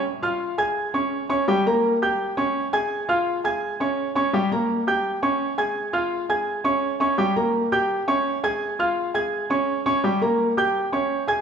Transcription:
\new Staff \with { instrumentName = "Grand piano" } { \time 4/4 \key des \lydian \tempo 4 = 168 r8 <f' f'' f'''>4 <aes' aes'' aes'''>4 <des' des'' des'''>4 <des' des'' des'''>8 | <g g' g''>8 <bes bes' bes''>4 <g' g'' g'''>4 <des' des'' des'''>4 <aes' aes'' aes'''>8~ | <aes' aes'' aes'''>8 <f' f'' f'''>4 <aes' aes'' aes'''>4 <des' des'' des'''>4 <des' des'' des'''>8 | <g g' g''>8 <bes bes' bes''>4 <g' g'' g'''>4 <des' des'' des'''>4 <aes' aes'' aes'''>8~ |
<aes' aes'' aes'''>8 <f' f'' f'''>4 <aes' aes'' aes'''>4 <des' des'' des'''>4 <des' des'' des'''>8 | <g g' g''>8 <bes bes' bes''>4 <g' g'' g'''>4 <des' des'' des'''>4 <aes' aes'' aes'''>8~ | <aes' aes'' aes'''>8 <f' f'' f'''>4 <aes' aes'' aes'''>4 <des' des'' des'''>4 <des' des'' des'''>8 | <g g' g''>8 <bes bes' bes''>4 <g' g'' g'''>4 <des' des'' des'''>4 <aes' aes'' aes'''>8 | }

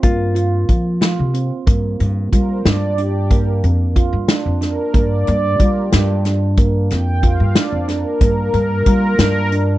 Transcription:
<<
  \new Staff \with { instrumentName = "Analog synth pad" } { \time 5/8 \key g \minor \tempo 4 = 92 r2 r8 | r2 r8 | r2 r8 | r2 r8 |
r2 bes'8~ | bes'2 r8 | }
  \new Staff \with { instrumentName = "Hollow-body jazz guitar" } { \time 5/8 \key g \minor f'2 r8 | r2 r8 | r2 r8 | r2 r8 |
r2 r8 | r2 r8 | }
  \new Staff \with { instrumentName = "Handpan" } { \time 5/8 \key g \minor bes8 f'4 f'8 c'8 | bes4 f'8 d'8 d'8 | bes4 f'8 d'8 d'8 | bes4 f'8 d'8 d'8 |
bes4 f'8 d'8 d'8 | bes4 f'8 d'8 d'8 | }
  \new Staff \with { instrumentName = "Upright bass" } { \clef bass \time 5/8 \key g \minor g,4 f8. c8 r16 | g,8 g,8 g8 g,4~ | g,8 f,8. g,16 r16 f,8 r16 | g,8 g,8 g8 g,4~ |
g,8 f,8. g,16 r16 f,8 r16 | g,8 g,8 g8 g,4 | }
  \new DrumStaff \with { instrumentName = "Drums" } \drummode { \time 5/8 <hh bd>8 hh8 <hh bd>8 <hh sn>8 hh8 | <hh bd>8 hh8 <hh bd>8 <hh sn>8 hh8 | <hh bd>8 hh8 <hh bd>8 <hh sn>8 <hh sn>8 | <hh bd>8 hh8 <hh bd>8 <hh sn>8 <hh sn>8 |
<hh bd>8 <hh sn>8 <hh bd>8 <hh sn>8 <hh sn>8 | <hh bd>8 hh8 <hh bd>8 <hh sn>8 hh8 | }
>>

